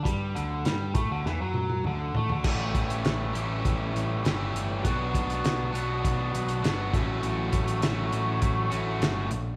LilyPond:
<<
  \new Staff \with { instrumentName = "Overdriven electric guitar" } { \time 4/4 \key a \mixolydian \tempo 4 = 100 g8 d8 g8 a16 d16 e16 fis8. d8 a16 d16 | <e a cis' g'>4. <e a cis' g'>4. <e a cis' g'>4 | <b d' fis'>4. <b d' fis'>4. <b d' fis'>8 <a cis' fis'>8~ | <a cis' fis'>4 <a cis' fis'>4. <a cis' fis'>4 r8 | }
  \new Staff \with { instrumentName = "Overdriven electric guitar" } { \time 4/4 \key a \mixolydian r1 | <a, e g cis' e'>4. <a, e g cis' e'>4. <a, e g cis' e'>4 | <b, fis b d' fis'>4. <b, fis b d' fis'>4. <b, fis b d' fis'>8 <a, fis a cis' fis'>8~ | <a, fis a cis' fis'>4 <a, fis a cis' fis'>4. <a, fis a cis' fis'>4 r8 | }
  \new Staff \with { instrumentName = "Picked electric bass" } { \clef bass \time 4/4 \key a \mixolydian g,8 d,8 g,8 a,16 d,16 e,16 fis,8. d,8 a,16 d,16 | a,,8 a,,8 a,,8 a,,8 a,,8 a,,8 g,,8 g,,8 | b,,8 b,,8 b,,8 b,,8 b,,8 b,,8 g,,8 a,,8 | a,,8 a,,8 a,,8 a,,8 a,,8 a,,8 g,,8 bes,,8 | }
  \new DrumStaff \with { instrumentName = "Drums" } \drummode { \time 4/4 <hh bd>8 hh8 <hh sn>8 <hh bd>8 sn8 tommh16 tommh16 toml8 tomfh16 tomfh16 | <cymc bd>8 <hh bd>16 hh16 <hh sn>8 hh8 <hh bd>8 hh8 <hh sn>8 hh8 | <hh bd>8 <hh bd>16 hh16 <hh sn>8 hh8 <hh bd>8 hh16 hh16 <hh sn>8 <hh bd sn>8 | hh8 <hh bd>16 hh16 <hh sn>8 hh8 <hh bd>8 hh8 <hh sn>8 hh8 | }
>>